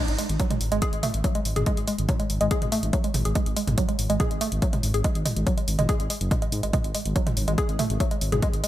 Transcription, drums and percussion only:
0.08 closed hi-hat
0.18 open hi-hat
0.29 closed hi-hat
0.40 kick, closed hi-hat
0.51 closed hi-hat, mid tom
0.61 open hi-hat
0.72 closed hi-hat
0.82 kick, closed hi-hat
0.93 closed hi-hat
1.03 mid tom, open hi-hat
1.14 closed hi-hat
1.24 kick, closed hi-hat
1.35 closed hi-hat
1.45 open hi-hat
1.56 closed hi-hat, mid tom
1.66 kick, closed hi-hat
1.77 closed hi-hat
1.87 open hi-hat
1.98 closed hi-hat
2.09 kick, closed hi-hat, mid tom
2.20 closed hi-hat
2.30 open hi-hat
2.41 closed hi-hat
2.51 kick, closed hi-hat
2.62 closed hi-hat, mid tom
2.72 open hi-hat
2.83 closed hi-hat
2.93 kick, closed hi-hat
3.04 closed hi-hat
3.14 mid tom, open hi-hat
3.25 closed hi-hat
3.35 kick, closed hi-hat
3.46 closed hi-hat
3.56 open hi-hat
3.67 closed hi-hat, mid tom
3.78 kick, closed hi-hat
3.89 closed hi-hat
3.99 open hi-hat
4.10 closed hi-hat
4.20 kick, closed hi-hat, mid tom
4.31 closed hi-hat
4.41 open hi-hat
4.52 closed hi-hat
4.62 kick, closed hi-hat
4.73 closed hi-hat, mid tom
4.83 open hi-hat
4.94 closed hi-hat
5.04 kick, closed hi-hat
5.15 closed hi-hat
5.26 mid tom, open hi-hat
5.36 closed hi-hat
5.47 kick, closed hi-hat
5.58 closed hi-hat
5.68 open hi-hat
5.79 closed hi-hat, mid tom
5.89 kick, closed hi-hat
6.00 closed hi-hat
6.10 open hi-hat
6.21 closed hi-hat
6.31 kick, closed hi-hat, mid tom
6.42 closed hi-hat
6.52 open hi-hat
6.63 closed hi-hat
6.73 kick, closed hi-hat, mid tom
6.84 closed hi-hat
6.95 open hi-hat
7.06 closed hi-hat
7.16 kick, closed hi-hat
7.27 closed hi-hat, mid tom
7.37 open hi-hat
7.48 closed hi-hat
7.58 kick, closed hi-hat
7.69 closed hi-hat
7.79 mid tom, open hi-hat
7.90 closed hi-hat
8.00 kick, closed hi-hat
8.11 closed hi-hat
8.21 open hi-hat
8.32 closed hi-hat, mid tom
8.42 kick, closed hi-hat
8.53 closed hi-hat
8.64 open hi-hat

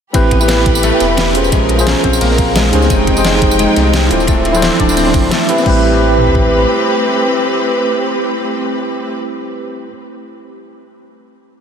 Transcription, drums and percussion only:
0.14 kick, closed hi-hat, ride, tambourine
0.31 kick, closed hi-hat, ride
0.41 tambourine
0.48 snare, closed hi-hat, ride, tambourine
0.66 kick, closed hi-hat, ride
0.75 tambourine
0.83 closed hi-hat, ride, tambourine
1.00 snare, closed hi-hat, ride, tambourine
1.17 snare, closed hi-hat, ride, tambourine
1.35 open hi-hat, ride
1.44 tambourine
1.52 kick, closed hi-hat, ride, tambourine
1.69 closed hi-hat, ride
1.79 tambourine
1.86 snare, closed hi-hat, ride, tambourine
2.04 kick, closed hi-hat, ride
2.13 tambourine
2.21 closed hi-hat, open hi-hat, tambourine
2.31 snare
2.38 kick, closed hi-hat, ride, tambourine
2.56 snare, closed hi-hat, ride, tambourine
2.64 snare
2.73 open hi-hat, ride
2.82 snare, tambourine
2.90 kick, closed hi-hat, ride, tambourine
3.07 kick, closed hi-hat, ride
3.17 tambourine
3.25 snare, closed hi-hat, ride, tambourine
3.42 kick, closed hi-hat, ride
3.51 tambourine
3.59 closed hi-hat, ride, tambourine
3.76 snare, closed hi-hat, ride, tambourine
3.93 snare, closed hi-hat, ride, tambourine
4.10 open hi-hat, ride
4.20 tambourine
4.27 kick, closed hi-hat, ride, tambourine
4.45 closed hi-hat, ride
4.54 tambourine
4.62 snare, closed hi-hat, ride, tambourine
4.80 kick, closed hi-hat, ride
4.89 tambourine
4.97 closed hi-hat, open hi-hat, tambourine
5.07 snare
5.14 kick, closed hi-hat, ride, tambourine
5.31 snare, closed hi-hat, ride, tambourine
5.41 snare
5.49 open hi-hat, ride
5.58 snare, tambourine
5.66 kick, crash
6.18 mid tom
6.27 floor tom
6.35 kick

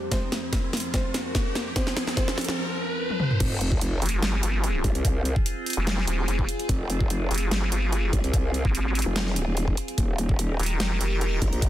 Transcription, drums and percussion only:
0.11 kick, snare, closed hi-hat
0.32 snare, closed hi-hat
0.53 kick, snare, closed hi-hat
0.73 snare, closed hi-hat
0.77 closed hi-hat
0.80 closed hi-hat
0.94 kick, snare, closed hi-hat
1.14 snare, closed hi-hat
1.35 kick, snare, closed hi-hat
1.55 snare, closed hi-hat
1.76 kick, snare, closed hi-hat
1.87 snare
1.97 snare, closed hi-hat
2.07 snare
2.17 kick, snare, closed hi-hat
2.28 snare
2.38 snare, closed hi-hat
2.41 closed hi-hat
2.44 closed hi-hat
2.48 snare
3.10 high tom
3.20 mid tom
3.31 mid tom
3.40 kick, closed hi-hat, crash
3.61 closed hi-hat
3.72 kick
3.81 closed hi-hat
4.02 closed hi-hat
4.06 closed hi-hat
4.09 closed hi-hat
4.22 snare, closed hi-hat
4.43 closed hi-hat
4.64 closed hi-hat
4.84 kick, closed hi-hat
4.95 closed hi-hat
5.05 kick, closed hi-hat
5.25 closed hi-hat
5.36 kick
5.46 closed hi-hat
5.66 closed hi-hat
5.70 closed hi-hat
5.73 closed hi-hat
5.87 snare, closed hi-hat
5.98 snare
6.07 closed hi-hat
6.28 closed hi-hat
6.39 kick
6.49 closed hi-hat
6.59 closed hi-hat
6.69 kick, closed hi-hat
6.90 closed hi-hat
7.01 kick
7.10 closed hi-hat
7.31 closed hi-hat
7.34 closed hi-hat
7.38 closed hi-hat
7.51 snare, closed hi-hat
7.72 closed hi-hat
7.92 closed hi-hat
8.13 kick, closed hi-hat
8.24 closed hi-hat
8.33 kick, closed hi-hat
8.54 closed hi-hat
8.65 kick
8.75 closed hi-hat
8.95 closed hi-hat
8.99 closed hi-hat
9.02 closed hi-hat
9.16 snare, closed hi-hat
9.27 snare
9.36 closed hi-hat
9.57 closed hi-hat
9.68 kick
9.77 closed hi-hat
9.88 closed hi-hat
9.98 kick, closed hi-hat
10.18 closed hi-hat
10.29 kick
10.39 closed hi-hat
10.60 closed hi-hat
10.63 closed hi-hat
10.66 closed hi-hat
10.80 snare, closed hi-hat
11.01 closed hi-hat
11.21 closed hi-hat
11.42 kick, closed hi-hat
11.53 closed hi-hat
11.62 kick, closed hi-hat

